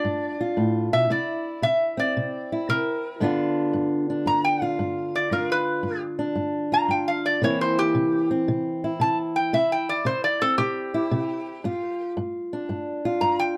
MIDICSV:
0, 0, Header, 1, 3, 480
1, 0, Start_track
1, 0, Tempo, 526778
1, 997, Time_signature, 4, 2, 24, 8
1, 12367, End_track
2, 0, Start_track
2, 0, Title_t, "Resonator guitar played with a steel bar"
2, 0, Program_c, 0, 25
2, 0, Note_on_c, 0, 74, 81
2, 352, Note_off_c, 0, 74, 0
2, 849, Note_on_c, 0, 76, 83
2, 998, Note_off_c, 0, 76, 0
2, 1014, Note_on_c, 0, 74, 68
2, 1472, Note_off_c, 0, 74, 0
2, 1487, Note_on_c, 0, 76, 87
2, 1794, Note_off_c, 0, 76, 0
2, 1818, Note_on_c, 0, 74, 84
2, 2430, Note_off_c, 0, 74, 0
2, 2456, Note_on_c, 0, 70, 83
2, 2914, Note_off_c, 0, 70, 0
2, 3893, Note_on_c, 0, 82, 87
2, 4042, Note_off_c, 0, 82, 0
2, 4050, Note_on_c, 0, 79, 77
2, 4213, Note_off_c, 0, 79, 0
2, 4213, Note_on_c, 0, 77, 80
2, 4672, Note_off_c, 0, 77, 0
2, 4697, Note_on_c, 0, 74, 73
2, 4844, Note_off_c, 0, 74, 0
2, 4854, Note_on_c, 0, 70, 62
2, 5002, Note_off_c, 0, 70, 0
2, 5027, Note_on_c, 0, 71, 74
2, 5479, Note_off_c, 0, 71, 0
2, 6137, Note_on_c, 0, 82, 77
2, 6284, Note_off_c, 0, 82, 0
2, 6293, Note_on_c, 0, 79, 69
2, 6442, Note_off_c, 0, 79, 0
2, 6449, Note_on_c, 0, 77, 70
2, 6599, Note_off_c, 0, 77, 0
2, 6612, Note_on_c, 0, 74, 71
2, 6761, Note_off_c, 0, 74, 0
2, 6779, Note_on_c, 0, 73, 74
2, 6925, Note_off_c, 0, 73, 0
2, 6936, Note_on_c, 0, 72, 84
2, 7083, Note_off_c, 0, 72, 0
2, 7095, Note_on_c, 0, 67, 89
2, 7552, Note_off_c, 0, 67, 0
2, 8212, Note_on_c, 0, 81, 83
2, 8360, Note_off_c, 0, 81, 0
2, 8528, Note_on_c, 0, 79, 74
2, 8678, Note_off_c, 0, 79, 0
2, 8691, Note_on_c, 0, 76, 74
2, 8840, Note_off_c, 0, 76, 0
2, 8858, Note_on_c, 0, 79, 72
2, 9003, Note_off_c, 0, 79, 0
2, 9014, Note_on_c, 0, 74, 78
2, 9161, Note_off_c, 0, 74, 0
2, 9170, Note_on_c, 0, 72, 75
2, 9319, Note_off_c, 0, 72, 0
2, 9330, Note_on_c, 0, 74, 75
2, 9479, Note_off_c, 0, 74, 0
2, 9491, Note_on_c, 0, 69, 83
2, 9635, Note_off_c, 0, 69, 0
2, 9639, Note_on_c, 0, 67, 87
2, 11041, Note_off_c, 0, 67, 0
2, 12036, Note_on_c, 0, 82, 71
2, 12192, Note_off_c, 0, 82, 0
2, 12205, Note_on_c, 0, 79, 82
2, 12356, Note_off_c, 0, 79, 0
2, 12367, End_track
3, 0, Start_track
3, 0, Title_t, "Steel-string acoustic guitar"
3, 0, Program_c, 1, 25
3, 0, Note_on_c, 1, 62, 50
3, 0, Note_on_c, 1, 65, 67
3, 42, Note_on_c, 1, 43, 71
3, 351, Note_off_c, 1, 65, 0
3, 369, Note_on_c, 1, 65, 59
3, 487, Note_off_c, 1, 43, 0
3, 518, Note_on_c, 1, 45, 67
3, 838, Note_off_c, 1, 45, 0
3, 846, Note_on_c, 1, 47, 58
3, 982, Note_off_c, 1, 62, 0
3, 985, Note_off_c, 1, 65, 0
3, 999, Note_off_c, 1, 47, 0
3, 1003, Note_on_c, 1, 48, 74
3, 1007, Note_on_c, 1, 64, 62
3, 1449, Note_off_c, 1, 48, 0
3, 1479, Note_on_c, 1, 48, 66
3, 1798, Note_on_c, 1, 60, 59
3, 1927, Note_off_c, 1, 48, 0
3, 1975, Note_on_c, 1, 48, 67
3, 2284, Note_off_c, 1, 64, 0
3, 2299, Note_on_c, 1, 64, 63
3, 2415, Note_off_c, 1, 48, 0
3, 2449, Note_on_c, 1, 48, 72
3, 2893, Note_off_c, 1, 48, 0
3, 2900, Note_off_c, 1, 60, 0
3, 2919, Note_on_c, 1, 43, 69
3, 2925, Note_on_c, 1, 50, 58
3, 2930, Note_off_c, 1, 64, 0
3, 2934, Note_on_c, 1, 59, 66
3, 2943, Note_on_c, 1, 62, 63
3, 2952, Note_on_c, 1, 65, 67
3, 3368, Note_off_c, 1, 43, 0
3, 3402, Note_on_c, 1, 43, 72
3, 3730, Note_off_c, 1, 62, 0
3, 3734, Note_on_c, 1, 62, 52
3, 3849, Note_off_c, 1, 43, 0
3, 3880, Note_on_c, 1, 43, 72
3, 4198, Note_off_c, 1, 65, 0
3, 4209, Note_on_c, 1, 65, 66
3, 4328, Note_off_c, 1, 43, 0
3, 4364, Note_on_c, 1, 43, 67
3, 4810, Note_off_c, 1, 43, 0
3, 4825, Note_off_c, 1, 65, 0
3, 4828, Note_off_c, 1, 59, 0
3, 4828, Note_off_c, 1, 62, 0
3, 4840, Note_on_c, 1, 43, 68
3, 4850, Note_on_c, 1, 65, 59
3, 5288, Note_off_c, 1, 43, 0
3, 5311, Note_on_c, 1, 43, 66
3, 5638, Note_on_c, 1, 62, 57
3, 5764, Note_off_c, 1, 43, 0
3, 5791, Note_on_c, 1, 43, 65
3, 6113, Note_off_c, 1, 65, 0
3, 6124, Note_on_c, 1, 65, 57
3, 6243, Note_off_c, 1, 43, 0
3, 6272, Note_on_c, 1, 43, 65
3, 6723, Note_off_c, 1, 43, 0
3, 6739, Note_off_c, 1, 62, 0
3, 6742, Note_off_c, 1, 65, 0
3, 6757, Note_on_c, 1, 48, 70
3, 6762, Note_off_c, 1, 50, 0
3, 6768, Note_on_c, 1, 52, 57
3, 6772, Note_on_c, 1, 58, 58
3, 6777, Note_on_c, 1, 60, 61
3, 6784, Note_on_c, 1, 64, 62
3, 7206, Note_off_c, 1, 48, 0
3, 7240, Note_on_c, 1, 48, 75
3, 7566, Note_off_c, 1, 60, 0
3, 7569, Note_on_c, 1, 60, 54
3, 7687, Note_off_c, 1, 48, 0
3, 7728, Note_on_c, 1, 48, 75
3, 8044, Note_off_c, 1, 64, 0
3, 8055, Note_on_c, 1, 64, 56
3, 8171, Note_off_c, 1, 48, 0
3, 8198, Note_on_c, 1, 48, 66
3, 8646, Note_off_c, 1, 48, 0
3, 8663, Note_off_c, 1, 52, 0
3, 8664, Note_off_c, 1, 60, 0
3, 8665, Note_off_c, 1, 58, 0
3, 8678, Note_off_c, 1, 64, 0
3, 8684, Note_on_c, 1, 48, 73
3, 8689, Note_on_c, 1, 64, 66
3, 9129, Note_off_c, 1, 48, 0
3, 9157, Note_on_c, 1, 48, 69
3, 9492, Note_on_c, 1, 60, 53
3, 9605, Note_off_c, 1, 48, 0
3, 9642, Note_on_c, 1, 48, 74
3, 9960, Note_off_c, 1, 64, 0
3, 9971, Note_on_c, 1, 64, 64
3, 10087, Note_off_c, 1, 48, 0
3, 10127, Note_on_c, 1, 48, 76
3, 10570, Note_off_c, 1, 48, 0
3, 10585, Note_off_c, 1, 60, 0
3, 10604, Note_off_c, 1, 64, 0
3, 10608, Note_on_c, 1, 43, 70
3, 10614, Note_on_c, 1, 65, 64
3, 11050, Note_off_c, 1, 43, 0
3, 11088, Note_on_c, 1, 43, 77
3, 11417, Note_on_c, 1, 62, 54
3, 11530, Note_off_c, 1, 43, 0
3, 11565, Note_on_c, 1, 43, 65
3, 11882, Note_off_c, 1, 65, 0
3, 11893, Note_on_c, 1, 65, 66
3, 12009, Note_off_c, 1, 43, 0
3, 12037, Note_on_c, 1, 43, 67
3, 12367, Note_off_c, 1, 43, 0
3, 12367, Note_off_c, 1, 62, 0
3, 12367, Note_off_c, 1, 65, 0
3, 12367, End_track
0, 0, End_of_file